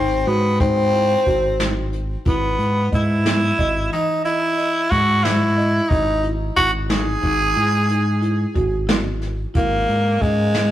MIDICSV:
0, 0, Header, 1, 5, 480
1, 0, Start_track
1, 0, Tempo, 662983
1, 1635, Time_signature, 11, 3, 24, 8
1, 7755, End_track
2, 0, Start_track
2, 0, Title_t, "Marimba"
2, 0, Program_c, 0, 12
2, 0, Note_on_c, 0, 63, 82
2, 162, Note_off_c, 0, 63, 0
2, 191, Note_on_c, 0, 66, 67
2, 399, Note_off_c, 0, 66, 0
2, 429, Note_on_c, 0, 63, 77
2, 638, Note_off_c, 0, 63, 0
2, 673, Note_on_c, 0, 64, 64
2, 880, Note_off_c, 0, 64, 0
2, 911, Note_on_c, 0, 66, 68
2, 1118, Note_off_c, 0, 66, 0
2, 1158, Note_on_c, 0, 63, 66
2, 1568, Note_off_c, 0, 63, 0
2, 1633, Note_on_c, 0, 64, 92
2, 2045, Note_off_c, 0, 64, 0
2, 2112, Note_on_c, 0, 75, 64
2, 2524, Note_off_c, 0, 75, 0
2, 2595, Note_on_c, 0, 75, 82
2, 2800, Note_off_c, 0, 75, 0
2, 2833, Note_on_c, 0, 52, 70
2, 3039, Note_off_c, 0, 52, 0
2, 3074, Note_on_c, 0, 75, 75
2, 3279, Note_off_c, 0, 75, 0
2, 3312, Note_on_c, 0, 75, 62
2, 3724, Note_off_c, 0, 75, 0
2, 3791, Note_on_c, 0, 64, 76
2, 3997, Note_off_c, 0, 64, 0
2, 4030, Note_on_c, 0, 75, 70
2, 4443, Note_off_c, 0, 75, 0
2, 4512, Note_on_c, 0, 64, 75
2, 4718, Note_off_c, 0, 64, 0
2, 4747, Note_on_c, 0, 64, 69
2, 4956, Note_off_c, 0, 64, 0
2, 4991, Note_on_c, 0, 63, 83
2, 5198, Note_off_c, 0, 63, 0
2, 5227, Note_on_c, 0, 63, 79
2, 5436, Note_off_c, 0, 63, 0
2, 5465, Note_on_c, 0, 64, 72
2, 5675, Note_off_c, 0, 64, 0
2, 5708, Note_on_c, 0, 63, 70
2, 5916, Note_off_c, 0, 63, 0
2, 5947, Note_on_c, 0, 64, 75
2, 6156, Note_off_c, 0, 64, 0
2, 6187, Note_on_c, 0, 66, 73
2, 6396, Note_off_c, 0, 66, 0
2, 6422, Note_on_c, 0, 64, 80
2, 6840, Note_off_c, 0, 64, 0
2, 6908, Note_on_c, 0, 64, 85
2, 7323, Note_off_c, 0, 64, 0
2, 7391, Note_on_c, 0, 61, 62
2, 7755, Note_off_c, 0, 61, 0
2, 7755, End_track
3, 0, Start_track
3, 0, Title_t, "Tenor saxophone"
3, 0, Program_c, 1, 66
3, 0, Note_on_c, 1, 60, 86
3, 202, Note_on_c, 1, 59, 72
3, 212, Note_off_c, 1, 60, 0
3, 431, Note_off_c, 1, 59, 0
3, 435, Note_on_c, 1, 60, 91
3, 1365, Note_off_c, 1, 60, 0
3, 1649, Note_on_c, 1, 59, 78
3, 2092, Note_off_c, 1, 59, 0
3, 2135, Note_on_c, 1, 64, 89
3, 2814, Note_off_c, 1, 64, 0
3, 2844, Note_on_c, 1, 63, 77
3, 3062, Note_off_c, 1, 63, 0
3, 3078, Note_on_c, 1, 64, 90
3, 3554, Note_on_c, 1, 66, 97
3, 3565, Note_off_c, 1, 64, 0
3, 3794, Note_on_c, 1, 64, 85
3, 3805, Note_off_c, 1, 66, 0
3, 4264, Note_on_c, 1, 63, 95
3, 4275, Note_off_c, 1, 64, 0
3, 4554, Note_off_c, 1, 63, 0
3, 4750, Note_on_c, 1, 66, 94
3, 4859, Note_off_c, 1, 66, 0
3, 4999, Note_on_c, 1, 68, 100
3, 6408, Note_off_c, 1, 68, 0
3, 6923, Note_on_c, 1, 58, 84
3, 7397, Note_on_c, 1, 56, 93
3, 7408, Note_off_c, 1, 58, 0
3, 7755, Note_off_c, 1, 56, 0
3, 7755, End_track
4, 0, Start_track
4, 0, Title_t, "Fingered electric bass"
4, 0, Program_c, 2, 33
4, 0, Note_on_c, 2, 32, 81
4, 171, Note_off_c, 2, 32, 0
4, 192, Note_on_c, 2, 44, 81
4, 833, Note_off_c, 2, 44, 0
4, 915, Note_on_c, 2, 32, 86
4, 1554, Note_off_c, 2, 32, 0
4, 1634, Note_on_c, 2, 32, 81
4, 1848, Note_off_c, 2, 32, 0
4, 1871, Note_on_c, 2, 44, 77
4, 2085, Note_off_c, 2, 44, 0
4, 2119, Note_on_c, 2, 44, 78
4, 2543, Note_off_c, 2, 44, 0
4, 2597, Note_on_c, 2, 32, 77
4, 2809, Note_off_c, 2, 32, 0
4, 3559, Note_on_c, 2, 44, 90
4, 4196, Note_off_c, 2, 44, 0
4, 4274, Note_on_c, 2, 32, 85
4, 4700, Note_off_c, 2, 32, 0
4, 4756, Note_on_c, 2, 32, 82
4, 5182, Note_off_c, 2, 32, 0
4, 5234, Note_on_c, 2, 32, 101
4, 5447, Note_off_c, 2, 32, 0
4, 5476, Note_on_c, 2, 44, 81
4, 6115, Note_off_c, 2, 44, 0
4, 6195, Note_on_c, 2, 32, 88
4, 6835, Note_off_c, 2, 32, 0
4, 6914, Note_on_c, 2, 32, 95
4, 7128, Note_off_c, 2, 32, 0
4, 7158, Note_on_c, 2, 44, 80
4, 7370, Note_off_c, 2, 44, 0
4, 7395, Note_on_c, 2, 44, 86
4, 7755, Note_off_c, 2, 44, 0
4, 7755, End_track
5, 0, Start_track
5, 0, Title_t, "Drums"
5, 196, Note_on_c, 9, 42, 54
5, 269, Note_off_c, 9, 42, 0
5, 436, Note_on_c, 9, 36, 105
5, 436, Note_on_c, 9, 42, 72
5, 508, Note_off_c, 9, 36, 0
5, 509, Note_off_c, 9, 42, 0
5, 678, Note_on_c, 9, 42, 51
5, 751, Note_off_c, 9, 42, 0
5, 917, Note_on_c, 9, 36, 73
5, 918, Note_on_c, 9, 42, 59
5, 989, Note_off_c, 9, 36, 0
5, 990, Note_off_c, 9, 42, 0
5, 1158, Note_on_c, 9, 38, 110
5, 1158, Note_on_c, 9, 42, 77
5, 1230, Note_off_c, 9, 38, 0
5, 1230, Note_off_c, 9, 42, 0
5, 1396, Note_on_c, 9, 42, 59
5, 1469, Note_off_c, 9, 42, 0
5, 1636, Note_on_c, 9, 36, 110
5, 1636, Note_on_c, 9, 42, 78
5, 1708, Note_off_c, 9, 42, 0
5, 1709, Note_off_c, 9, 36, 0
5, 1877, Note_on_c, 9, 42, 60
5, 1950, Note_off_c, 9, 42, 0
5, 2117, Note_on_c, 9, 36, 75
5, 2118, Note_on_c, 9, 42, 66
5, 2190, Note_off_c, 9, 36, 0
5, 2190, Note_off_c, 9, 42, 0
5, 2358, Note_on_c, 9, 38, 95
5, 2358, Note_on_c, 9, 42, 85
5, 2430, Note_off_c, 9, 38, 0
5, 2430, Note_off_c, 9, 42, 0
5, 2598, Note_on_c, 9, 36, 71
5, 2600, Note_on_c, 9, 42, 59
5, 2671, Note_off_c, 9, 36, 0
5, 2673, Note_off_c, 9, 42, 0
5, 2843, Note_on_c, 9, 38, 31
5, 2843, Note_on_c, 9, 42, 58
5, 2915, Note_off_c, 9, 38, 0
5, 2915, Note_off_c, 9, 42, 0
5, 3081, Note_on_c, 9, 42, 86
5, 3153, Note_off_c, 9, 42, 0
5, 3323, Note_on_c, 9, 42, 58
5, 3396, Note_off_c, 9, 42, 0
5, 3558, Note_on_c, 9, 36, 72
5, 3559, Note_on_c, 9, 38, 31
5, 3559, Note_on_c, 9, 42, 57
5, 3631, Note_off_c, 9, 36, 0
5, 3632, Note_off_c, 9, 38, 0
5, 3632, Note_off_c, 9, 42, 0
5, 3801, Note_on_c, 9, 38, 92
5, 3801, Note_on_c, 9, 42, 80
5, 3873, Note_off_c, 9, 38, 0
5, 3873, Note_off_c, 9, 42, 0
5, 4045, Note_on_c, 9, 42, 57
5, 4117, Note_off_c, 9, 42, 0
5, 4277, Note_on_c, 9, 36, 110
5, 4278, Note_on_c, 9, 42, 81
5, 4349, Note_off_c, 9, 36, 0
5, 4351, Note_off_c, 9, 42, 0
5, 4514, Note_on_c, 9, 42, 53
5, 4587, Note_off_c, 9, 42, 0
5, 4756, Note_on_c, 9, 36, 70
5, 4756, Note_on_c, 9, 42, 55
5, 4828, Note_off_c, 9, 36, 0
5, 4828, Note_off_c, 9, 42, 0
5, 4994, Note_on_c, 9, 38, 91
5, 4994, Note_on_c, 9, 42, 78
5, 5066, Note_off_c, 9, 38, 0
5, 5066, Note_off_c, 9, 42, 0
5, 5232, Note_on_c, 9, 42, 59
5, 5235, Note_on_c, 9, 36, 62
5, 5304, Note_off_c, 9, 42, 0
5, 5307, Note_off_c, 9, 36, 0
5, 5472, Note_on_c, 9, 42, 60
5, 5544, Note_off_c, 9, 42, 0
5, 5713, Note_on_c, 9, 42, 91
5, 5785, Note_off_c, 9, 42, 0
5, 5953, Note_on_c, 9, 42, 56
5, 6025, Note_off_c, 9, 42, 0
5, 6192, Note_on_c, 9, 42, 56
5, 6194, Note_on_c, 9, 36, 77
5, 6264, Note_off_c, 9, 42, 0
5, 6266, Note_off_c, 9, 36, 0
5, 6434, Note_on_c, 9, 38, 105
5, 6434, Note_on_c, 9, 42, 77
5, 6506, Note_off_c, 9, 38, 0
5, 6506, Note_off_c, 9, 42, 0
5, 6673, Note_on_c, 9, 38, 33
5, 6673, Note_on_c, 9, 42, 54
5, 6745, Note_off_c, 9, 38, 0
5, 6745, Note_off_c, 9, 42, 0
5, 6912, Note_on_c, 9, 42, 82
5, 6915, Note_on_c, 9, 36, 102
5, 6985, Note_off_c, 9, 42, 0
5, 6988, Note_off_c, 9, 36, 0
5, 7156, Note_on_c, 9, 42, 52
5, 7228, Note_off_c, 9, 42, 0
5, 7397, Note_on_c, 9, 36, 75
5, 7400, Note_on_c, 9, 42, 57
5, 7470, Note_off_c, 9, 36, 0
5, 7472, Note_off_c, 9, 42, 0
5, 7635, Note_on_c, 9, 38, 93
5, 7635, Note_on_c, 9, 42, 75
5, 7707, Note_off_c, 9, 38, 0
5, 7707, Note_off_c, 9, 42, 0
5, 7755, End_track
0, 0, End_of_file